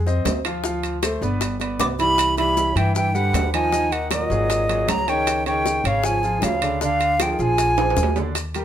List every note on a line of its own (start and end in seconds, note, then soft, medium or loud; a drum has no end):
0.00 0.21 F2 loud
0.06 0.38 C4 medium
0.06 0.38 C5 medium
0.06 0.39 D#5 medium
0.06 high bongo soft
0.06 maracas soft
0.25 1.16 D2 medium
0.25 high bongo soft
0.25 low bongo medium
0.25 high timbale medium
0.25 low timbale medium
0.25 maracas medium
0.45 0.61 F3 medium
0.45 0.61 F4 medium
0.45 0.61 F5 medium
0.45 high timbale medium
0.45 maracas soft
0.64 0.96 F3 medium
0.64 0.96 F4 medium
0.64 0.96 F5 medium
0.64 high bongo medium
0.64 maracas medium
0.83 high bongo soft
0.83 high timbale medium
0.83 maracas soft
1.03 1.19 A3 medium
1.03 1.19 A4 medium
1.03 1.19 C5 medium
1.03 high bongo medium
1.03 high timbale medium
1.03 low timbale medium
1.03 maracas medium
1.21 1.76 G1 medium
1.21 1.54 B3 medium
1.21 1.54 B4 medium
1.21 1.54 D5 medium
1.21 high bongo soft
1.21 maracas soft
1.41 high bongo medium
1.41 high timbale medium
1.41 maracas medium
1.60 1.92 B3 medium
1.60 1.93 B4 medium
1.60 1.93 D5 medium
1.60 high bongo soft
1.60 high timbale medium
1.60 maracas soft
1.79 2.70 C2 medium
1.79 1.89 B3 medium
1.79 1.86 D6 loud
1.79 high bongo soft
1.79 low bongo medium
1.79 high timbale medium
1.79 low timbale medium
1.79 maracas medium
1.99 2.31 E3 medium
1.99 2.36 G3 medium
1.99 2.31 E4 medium
1.99 2.31 E5 medium
1.99 2.35 B5 loud
1.99 high timbale medium
1.99 maracas soft
2.18 high bongo medium
2.18 high timbale medium
2.18 maracas medium
2.37 2.69 E3 medium
2.37 2.79 G3 medium
2.37 2.70 E4 medium
2.37 2.70 E5 medium
2.37 2.78 B5 medium
2.37 high bongo soft
2.37 high timbale medium
2.37 maracas soft
2.57 high bongo medium
2.57 low timbale medium
2.57 maracas medium
2.75 3.30 G2 medium
2.75 3.08 E3 medium
2.75 2.95 E3 medium
2.75 3.08 E4 medium
2.75 3.08 E5 medium
2.75 2.96 G5 medium
2.75 high bongo soft
2.75 high timbale medium
2.75 maracas soft
2.95 3.17 E3 medium
2.95 3.16 G5 medium
2.95 high bongo medium
2.95 maracas medium
3.15 3.53 D3 medium
3.15 3.46 G3 medium
3.15 3.47 G4 medium
3.15 3.47 B4 medium
3.15 3.53 F#5 medium
3.15 high bongo soft
3.15 maracas soft
3.33 4.24 D#2 medium
3.33 high bongo soft
3.33 low bongo medium
3.33 high timbale medium
3.33 low timbale medium
3.33 maracas medium
3.53 3.69 D#3 medium
3.53 3.94 F3 medium
3.53 3.70 D#4 medium
3.53 3.70 D#5 medium
3.53 3.94 G#5 medium
3.53 high timbale medium
3.53 maracas soft
3.72 4.04 D#3 medium
3.72 4.04 D#4 medium
3.72 4.04 D#5 medium
3.72 high bongo medium
3.72 maracas medium
3.92 4.12 D#3 medium
3.92 4.12 F#5 medium
3.92 high bongo soft
3.92 high timbale medium
3.92 maracas soft
4.11 4.91 A#2 medium
4.11 4.27 F#3 medium
4.11 4.27 F#4 medium
4.11 4.28 A#4 medium
4.11 4.91 D#5 medium
4.11 high bongo medium
4.11 high timbale medium
4.11 low timbale medium
4.11 maracas medium
4.30 4.84 G#1 loud
4.30 4.63 F#3 medium
4.30 4.63 F#4 medium
4.30 4.63 G#4 medium
4.30 high bongo soft
4.30 maracas soft
4.50 high bongo medium
4.50 high timbale medium
4.50 maracas medium
4.69 5.01 F#3 medium
4.69 5.01 F#4 medium
4.69 5.01 G#4 medium
4.69 high bongo soft
4.69 high timbale medium
4.69 maracas soft
4.88 5.79 C#2 medium
4.88 5.10 F#3 medium
4.88 5.10 A#5 medium
4.88 high bongo soft
4.88 low bongo medium
4.88 high timbale medium
4.88 low timbale medium
4.88 maracas medium
5.08 5.39 C#3 medium
5.08 5.47 D#3 medium
5.08 5.40 C#4 medium
5.08 5.40 C#5 medium
5.08 5.47 G5 medium
5.08 high timbale medium
5.08 maracas soft
5.27 high bongo medium
5.27 high timbale medium
5.27 maracas medium
5.46 5.78 C#3 medium
5.46 5.87 D#3 medium
5.46 5.78 C#4 medium
5.46 5.78 C#5 medium
5.46 5.89 G5 medium
5.46 high bongo soft
5.46 high timbale medium
5.46 maracas soft
5.65 high bongo medium
5.65 low timbale medium
5.65 maracas medium
5.84 6.38 G#1 loud
5.84 6.16 C#3 medium
5.84 6.07 C#3 medium
5.84 6.17 C#4 medium
5.84 6.17 C#5 medium
5.84 6.07 F5 medium
5.84 high bongo soft
5.84 high timbale medium
5.84 maracas soft
6.04 6.45 F3 medium
6.04 6.46 G#5 medium
6.04 high bongo medium
6.04 maracas medium
6.23 6.55 F3 medium
6.23 6.55 F4 medium
6.23 6.56 G#4 medium
6.23 high bongo soft
6.23 maracas soft
6.42 7.33 D2 medium
6.42 6.82 C#3 medium
6.42 6.82 F5 medium
6.42 high bongo soft
6.42 low bongo medium
6.42 high timbale medium
6.42 low timbale medium
6.42 maracas medium
6.62 6.78 D3 medium
6.62 6.78 D4 medium
6.62 6.78 D5 medium
6.62 high timbale medium
6.62 maracas soft
6.81 7.13 D3 medium
6.81 7.21 D3 medium
6.81 7.13 D4 medium
6.81 7.13 D5 medium
6.81 7.24 F5 medium
6.81 high bongo medium
6.81 maracas medium
7.00 high bongo soft
7.00 high timbale medium
7.00 maracas soft
7.20 7.34 D3 medium
7.20 7.36 F3 medium
7.20 7.36 F4 medium
7.20 7.36 G#4 medium
7.20 7.33 G5 medium
7.20 high bongo medium
7.20 high timbale medium
7.20 low timbale medium
7.20 maracas medium
7.32 7.42 D#3 soft
7.32 7.43 G5 medium
7.39 7.93 A#1 medium
7.39 7.71 F3 medium
7.39 8.17 F3 medium
7.39 7.71 F4 medium
7.39 7.71 G#4 medium
7.39 8.17 G#5 medium
7.39 high bongo soft
7.39 maracas soft
7.58 high bongo medium
7.58 high timbale medium
7.58 maracas medium
7.77 8.10 F3 medium
7.77 8.10 F4 medium
7.77 8.10 G#4 medium
7.77 high bongo soft
7.77 high timbale medium
7.77 maracas soft
7.90 high timbale medium
7.96 8.65 D#2 medium
7.96 high bongo soft
7.96 low bongo medium
7.96 maracas medium
8.03 low timbale medium
8.16 8.32 D3 medium
8.16 8.33 D4 medium
8.16 8.33 D5 medium
8.16 low timbale medium
8.16 maracas soft
8.35 high bongo medium
8.35 high timbale medium
8.35 maracas medium
8.55 8.65 G3 medium
8.55 8.65 G4 medium
8.55 8.65 A#4 medium
8.55 high bongo soft
8.55 high timbale medium
8.55 maracas soft